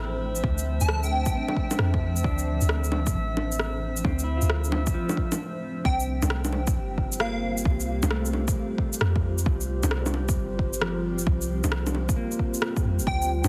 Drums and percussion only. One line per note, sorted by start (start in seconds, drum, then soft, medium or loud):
0.36 shaker soft
0.44 kick loud
0.58 shaker soft
0.81 shaker medium
0.89 cross-stick loud
1.03 shaker soft
1.26 kick medium
1.26 shaker medium
1.48 low bongo soft
1.57 kick medium
1.71 low bongo medium
1.71 shaker medium
1.79 cross-stick medium
1.94 kick loud
2.16 shaker soft
2.24 kick loud
2.39 shaker soft
2.61 shaker medium
2.69 cross-stick loud
2.84 shaker soft
2.92 low bongo medium
3.07 kick loud
3.07 shaker medium
3.37 low bongo soft
3.52 shaker medium
3.60 cross-stick medium
3.97 shaker medium
4.05 kick loud
4.05 low bongo soft
4.19 shaker soft
4.42 shaker medium
4.50 cross-stick loud
4.64 shaker soft
4.72 low bongo medium
4.87 kick loud
4.87 shaker medium
5.09 low bongo medium
5.09 shaker soft
5.17 kick medium
5.32 low bongo medium
5.32 shaker medium
5.85 kick loud
6.00 shaker soft
6.22 low bongo medium
6.22 shaker medium
6.30 cross-stick loud
6.45 low bongo medium
6.45 shaker soft
6.53 low bongo soft
6.67 kick loud
6.67 shaker medium
6.98 kick medium
7.12 shaker medium
7.20 cross-stick loud
7.58 shaker medium
7.65 kick loud
7.80 shaker soft
8.03 low bongo medium
8.03 shaker medium
8.11 cross-stick loud
8.25 shaker soft
8.33 low bongo soft
8.48 kick loud
8.48 shaker medium
8.78 kick medium
8.93 shaker medium
9.01 cross-stick loud
9.16 kick loud
9.38 shaker medium
9.46 kick loud
9.61 shaker soft
9.83 low bongo medium
9.83 shaker medium
9.91 cross-stick loud
10.06 low bongo medium
10.06 shaker soft
10.14 low bongo soft
10.29 kick loud
10.29 shaker medium
10.59 kick medium
10.73 shaker medium
10.82 cross-stick loud
11.19 shaker medium
11.27 kick loud
11.41 shaker soft
11.64 low bongo medium
11.64 shaker medium
11.72 cross-stick loud
11.87 low bongo medium
11.87 shaker soft
11.95 low bongo soft
12.09 kick loud
12.09 shaker medium
12.32 shaker soft
12.39 kick medium
12.54 shaker medium
12.62 cross-stick loud
12.77 kick loud
12.77 shaker soft
12.99 shaker medium
13.07 kick loud
13.22 shaker soft
13.44 low bongo medium
13.44 shaker medium